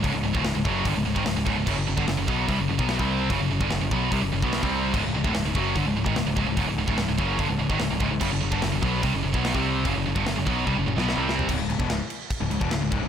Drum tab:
CC |----------------|x---------------|----------------|x---------------|
HH |o---o---o---o---|----o---o---o---|o---o---o---o---|----o---o---o---|
SD |----o-------o---|----o-------o---|----o-------o---|----o-------o---|
T2 |----------------|----------------|----------------|----------------|
FT |----------------|----------------|----------------|----------------|
BD |o--o--o-o--o--o-|o--o--o-o--o-o--|o--o--o-o--o-o--|o--o--o-o--o--o-|

CC |----------------|x---------------|----------------|x-x-x-x-x-x-x-x-|
HH |o---o---o---o---|----o---o---o---|o---o-----------|----------------|
SD |----o-------o---|----o-------o---|----o------oo-o-|----o-------o---|
T2 |----------------|----------------|----------o-----|----------------|
FT |----------------|----------------|---------------o|----------------|
BD |o--o--o-o--o--o-|o--o--o-o--o-o--|o--o--o-o-------|o--o----o--o--o-|